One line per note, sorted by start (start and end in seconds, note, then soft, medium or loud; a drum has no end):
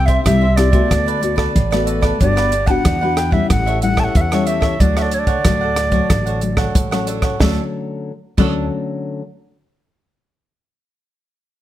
0.00 0.16 C2 medium
0.00 0.22 C3 medium
0.00 0.21 C4 medium
0.00 0.21 E4 medium
0.00 0.21 G4 medium
0.06 0.24 G4 medium
0.06 0.24 C5 medium
0.06 0.24 E5 medium
0.06 0.23 E5 medium
0.06 kick medium
0.06 closed hi-hat soft
0.24 0.81 C2 loud
0.24 0.88 G3 medium
0.24 0.45 C4 medium
0.24 0.40 E4 soft
0.24 0.45 E4 medium
0.24 0.40 G4 medium
0.24 0.45 G4 medium
0.24 0.41 C5 medium
0.24 0.58 E5 loud
0.24 0.40 E5 medium
0.24 kick medium
0.24 cross-stick medium
0.24 closed hi-hat medium
0.41 0.73 G4 medium
0.41 0.72 C5 medium
0.41 0.71 E5 medium
0.56 0.69 C4 medium
0.56 0.69 E4 medium
0.56 0.69 G4 medium
0.56 1.87 D5 medium
0.56 cross-stick medium
0.56 closed hi-hat medium
0.72 1.18 A3 medium
0.72 1.18 B3 medium
0.72 1.18 F#4 medium
0.72 0.89 G4 medium
0.72 0.89 C5 medium
0.72 0.88 E5 medium
0.72 kick medium
0.72 closed hi-hat soft
0.90 1.46 D2 loud
0.90 1.53 D3 medium
0.90 muted cavaquinho stroke soft
0.90 kick medium
0.90 cross-stick medium
0.90 closed hi-hat medium
1.06 1.20 A4 medium
1.06 1.20 B4 medium
1.06 1.21 D5 medium
1.06 closed hi-hat soft
1.21 1.53 A3 medium
1.21 1.54 B3 medium
1.21 1.54 F#4 medium
1.21 muted cavaquinho stroke soft
1.21 closed hi-hat medium
1.36 1.70 A4 medium
1.36 1.69 B4 medium
1.36 1.69 D5 medium
1.36 kick medium
1.36 cross-stick medium
1.55 2.11 A1 medium
1.55 2.18 A2 medium
1.55 kick medium
1.55 closed hi-hat medium
1.71 2.16 A3 medium
1.71 2.16 B3 medium
1.71 2.17 F#4 medium
1.71 1.85 A4 medium
1.71 1.86 B4 medium
1.71 1.86 D5 medium
1.71 cross-stick medium
1.71 closed hi-hat soft
1.85 2.02 F#4 medium
1.85 2.02 A4 medium
1.85 2.01 B4 medium
1.85 2.00 D5 medium
1.85 closed hi-hat medium
2.01 2.19 A4 medium
2.01 2.18 B4 medium
2.01 2.18 D5 medium
2.01 kick medium
2.01 cross-stick medium
2.01 closed hi-hat soft
2.20 2.76 G1 medium
2.20 2.83 G3 medium
2.20 2.52 B3 medium
2.20 2.35 D4 soft
2.20 2.52 D4 medium
2.20 2.52 F#4 medium
2.20 2.35 G4 medium
2.20 2.36 B4 medium
2.20 2.69 D5 medium
2.20 2.35 F#5 medium
2.20 kick medium
2.20 closed hi-hat medium
2.36 2.50 G4 medium
2.36 2.51 B4 medium
2.36 2.51 F#5 medium
2.36 cross-stick medium
2.36 closed hi-hat soft
2.51 2.67 D4 medium
2.51 2.67 G4 medium
2.51 2.66 B4 medium
2.51 2.65 F#5 medium
2.51 closed hi-hat soft
2.66 2.97 B3 medium
2.66 2.97 D4 medium
2.66 2.97 F#4 medium
2.66 2.84 G4 medium
2.66 2.83 B4 medium
2.66 2.83 F#5 medium
2.66 2.72 A5 medium
2.66 kick medium
2.66 closed hi-hat soft
2.71 3.18 F#5 loud
2.85 3.41 E2 loud
2.85 3.48 D3 medium
2.85 3.00 D4 medium
2.85 3.00 G4 medium
2.85 3.01 B4 medium
2.85 3.00 F#5 medium
2.85 kick medium
2.85 cross-stick medium
2.85 closed hi-hat medium
3.01 3.30 B3 medium
3.01 3.30 D4 medium
3.01 3.30 F#4 medium
3.01 3.32 G4 medium
3.01 3.31 B4 medium
3.01 3.29 F#5 medium
3.17 3.34 G5 loud
3.17 cross-stick medium
3.17 closed hi-hat soft
3.31 3.77 G3 medium
3.31 3.77 C#4 medium
3.31 3.77 E4 medium
3.31 3.48 G4 medium
3.31 3.48 B4 medium
3.31 3.50 E5 medium
3.31 3.47 F#5 medium
3.31 kick medium
3.50 4.06 A1 loud
3.50 4.13 A2 medium
3.50 3.81 F#5 loud
3.50 muted cavaquinho stroke soft
3.50 kick medium
3.50 cross-stick medium
3.50 closed hi-hat medium
3.66 3.80 A4 medium
3.66 3.81 C#5 medium
3.66 3.81 E5 medium
3.66 closed hi-hat soft
3.81 4.26 G3 medium
3.81 4.27 C#4 medium
3.81 4.27 E4 medium
3.81 4.01 F#5 loud
3.81 muted cavaquinho stroke soft
3.81 closed hi-hat soft
3.97 4.30 A4 medium
3.97 4.30 C#5 medium
3.97 4.29 E5 medium
3.97 4.05 A5 medium
3.97 kick medium
3.97 cross-stick medium
4.04 4.18 F#5 loud
4.15 4.71 E2 medium
4.15 4.78 E3 medium
4.15 4.22 E5 medium
4.15 kick medium
4.15 closed hi-hat medium
4.21 4.48 F#5 loud
4.31 4.76 G3 medium
4.31 4.76 C#4 medium
4.31 4.76 E4 medium
4.31 4.45 A4 medium
4.31 4.46 C#5 medium
4.31 4.46 E5 medium
4.31 cross-stick medium
4.31 closed hi-hat soft
4.45 4.62 G4 soft
4.45 4.61 A4 medium
4.45 4.61 C#5 medium
4.45 4.82 E5 medium
4.45 4.59 E5 medium
4.45 closed hi-hat soft
4.61 4.78 A4 medium
4.61 4.78 C#5 medium
4.61 4.77 E5 medium
4.61 kick medium
4.61 cross-stick medium
4.80 5.35 D2 loud
4.80 5.42 D3 medium
4.80 5.22 F#3 medium
4.80 5.23 A3 medium
4.80 4.95 D4 soft
4.80 4.96 A4 medium
4.80 4.96 C#5 medium
4.80 4.98 D5 medium
4.80 4.95 F#5 soft
4.80 kick medium
4.80 closed hi-hat medium
4.97 5.11 A4 medium
4.97 5.11 C#5 medium
4.97 5.03 E5 medium
4.97 5.12 F#5 medium
4.97 cross-stick medium
4.97 closed hi-hat soft
5.02 5.15 D5 medium
5.11 5.27 D4 medium
5.11 5.27 A4 soft
5.11 5.26 C#5 medium
5.11 5.20 C#5 medium
5.11 5.26 F#5 medium
5.11 closed hi-hat medium
5.19 6.75 D5 medium
5.27 5.44 A4 medium
5.27 5.43 C#5 medium
5.27 5.43 F#5 medium
5.27 kick medium
5.27 closed hi-hat soft
5.45 6.00 D2 loud
5.45 6.07 A2 medium
5.45 5.89 F#3 medium
5.45 5.89 A3 medium
5.45 5.60 D4 medium
5.45 5.60 A4 medium
5.45 5.61 C#5 medium
5.45 5.60 F#5 medium
5.45 kick medium
5.45 cross-stick medium
5.45 closed hi-hat medium
5.61 5.92 A4 medium
5.61 5.91 F#5 medium
5.76 cross-stick medium
5.76 closed hi-hat medium
5.92 6.37 F#3 medium
5.92 6.37 A3 medium
5.92 6.09 A4 medium
5.92 6.08 C#5 medium
5.92 6.08 F#5 medium
5.92 kick medium
5.92 closed hi-hat soft
6.10 6.65 A1 loud
6.10 6.72 D3 medium
6.10 kick medium
6.10 cross-stick medium
6.10 closed hi-hat medium
6.26 6.40 A4 medium
6.26 6.41 C#5 medium
6.26 6.41 F#5 medium
6.26 closed hi-hat soft
6.41 6.86 F#3 medium
6.41 6.86 A3 medium
6.41 muted cavaquinho stroke soft
6.41 closed hi-hat soft
6.57 6.90 A4 medium
6.57 6.89 C#5 medium
6.57 6.89 F#5 medium
6.57 kick medium
6.57 cross-stick medium
6.74 7.30 A1 medium
6.74 7.36 A2 medium
6.74 kick medium
6.74 closed hi-hat medium
6.91 7.35 F#3 medium
6.91 7.35 A3 medium
6.91 7.36 C#4 medium
6.91 7.06 A4 medium
6.91 7.07 C#5 medium
6.91 7.06 F#5 medium
6.91 cross-stick medium
6.91 closed hi-hat soft
7.07 7.22 D4 medium
7.07 7.23 A4 medium
7.07 7.22 C#5 medium
7.07 7.21 F#5 medium
7.07 closed hi-hat medium
7.22 7.39 A4 medium
7.22 7.39 C#5 medium
7.22 7.38 F#5 medium
7.22 kick medium
7.22 cross-stick medium
7.22 closed hi-hat soft
7.40 7.58 D2 medium
7.40 8.11 D3 medium
7.40 8.11 F#3 medium
7.40 8.11 A3 medium
7.40 8.11 C#4 medium
7.40 7.59 D4 medium
7.40 7.60 A4 medium
7.40 7.60 C#5 medium
7.40 7.60 F#5 medium
7.40 kick medium
7.40 snare medium
8.37 8.68 D2 medium
8.37 9.21 D3 medium
8.37 9.21 F#3 medium
8.37 9.21 A3 medium
8.37 9.21 C#4 medium
8.37 8.63 D4 medium
8.37 8.64 A4 medium
8.37 8.64 C#5 medium
8.37 8.64 F#5 medium
8.37 kick medium
8.37 crash medium